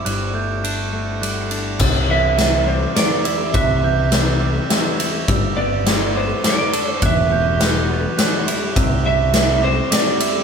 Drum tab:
CC |------|x-----|------|------|
RD |x-x-xx|--x-xx|x-x-xx|x-x-xx|
SD |------|--o-o-|--o-o-|--o-o-|
BD |------|o-----|o-----|o-----|

CC |------|------|
RD |x-x-xx|x-x-xx|
SD |--o-o-|--o-o-|
BD |o-----|o-----|